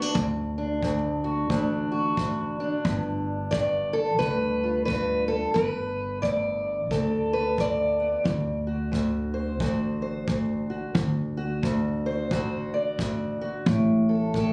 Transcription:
Already playing: steel-string acoustic guitar D2 F#4
0.02 steel-string acoustic guitar D4
0.15 upright bass D2, steel-string acoustic guitar D2, kick
0.58 steel-string acoustic guitar D4
0.83 steel-string acoustic guitar D2, kick
1.24 steel-string acoustic guitar F#4
1.50 upright bass A1, steel-string acoustic guitar D2 D4, kick
1.92 steel-string acoustic guitar F#4
2.17 steel-string acoustic guitar D2, kick
2.60 steel-string acoustic guitar D4
2.85 upright bass G1, steel-string acoustic guitar G2, kick
3.51 steel-string acoustic guitar G2 D5, kick
3.93 steel-string acoustic guitar A4
4.19 upright bass D2, steel-string acoustic guitar G2 B4, kick
4.64 steel-string acoustic guitar F4
4.85 steel-string acoustic guitar G2 B4, kick
5.28 steel-string acoustic guitar A4
5.54 upright bass G1, steel-string acoustic guitar D2 B4, kick
6.22 steel-string acoustic guitar D2 D5, kick
6.91 upright bass D2, steel-string acoustic guitar D2 A4, kick
7.33 steel-string acoustic guitar B4
7.58 steel-string acoustic guitar D2 D5, kick
8.00 steel-string acoustic guitar B3
8.24 steel-string acoustic guitar D2, upright bass D2, kick
8.67 steel-string acoustic guitar F#4
8.92 steel-string acoustic guitar D2, kick
9.34 steel-string acoustic guitar C5
9.60 upright bass A1, steel-string acoustic guitar D2 F#4, kick
10.02 steel-string acoustic guitar C5
10.28 steel-string acoustic guitar D2, kick
10.70 steel-string acoustic guitar F#4
10.94 steel-string acoustic guitar D2, upright bass D2, kick
11.37 steel-string acoustic guitar F#4
11.63 steel-string acoustic guitar D2, kick
12.06 steel-string acoustic guitar C5
12.31 upright bass A1, steel-string acoustic guitar D2 F#4, kick
12.74 steel-string acoustic guitar D5
12.99 steel-string acoustic guitar D2, kick
13.41 steel-string acoustic guitar F#4
13.66 upright bass A1, steel-string acoustic guitar A2, kick
14.09 steel-string acoustic guitar A4
14.34 steel-string acoustic guitar A2 A4, kick

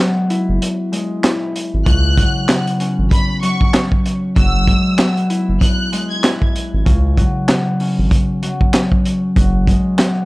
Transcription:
Already playing: harp F#3 G#3 C#4
0.00 harp B3
0.30 harp E4, closed hi-hat
0.49 sub bass F#1
0.62 closed hi-hat
0.92 harp G#3, closed hi-hat
1.23 harp E4, snare, clap, closed hi-hat
1.56 closed hi-hat
1.74 sub bass G#1
1.85 sub bass C#2, harp C#3, violin section F#6, kick, closed hi-hat
2.17 harp F#3, kick, closed hi-hat
2.49 harp B3, snare, clap, closed hi-hat
2.67 closed hi-hat
2.80 harp C#4, closed hi-hat
2.99 sub bass G#1
3.11 violin section B5, kick, closed hi-hat
3.42 harp F#3, violin section C#6, closed hi-hat
3.61 kick
3.74 harp C#4, snare, clap, closed hi-hat
3.92 kick
4.06 closed hi-hat
4.36 sub bass F#1, harp F#3, violin section E6, kick, closed hi-hat
4.67 harp G#3, kick, closed hi-hat
4.99 harp B3, snare, clap, closed hi-hat
5.17 closed hi-hat
5.30 harp E4, closed hi-hat
5.49 sub bass F#1
5.61 violin section F#6, kick, closed hi-hat
5.92 harp G#3, closed hi-hat
6.10 violin section G#6
6.23 harp E4, snare, clap, closed hi-hat
6.42 kick
6.56 closed hi-hat
6.74 sub bass G#1
6.85 sub bass C#2, harp C#3, kick, closed hi-hat
7.17 harp F#3, kick, closed hi-hat
7.48 harp B3, snare, clap, closed hi-hat
7.80 harp C#4, open hi-hat
7.99 sub bass G#1
8.11 kick, closed hi-hat
8.43 harp F#3, closed hi-hat
8.61 kick
8.74 harp C#4, snare, clap, closed hi-hat
8.92 kick
9.05 closed hi-hat
9.36 sub bass F#1, harp F#3, kick, closed hi-hat
9.67 harp G#3, kick, closed hi-hat
9.99 harp B3, snare, clap, closed hi-hat

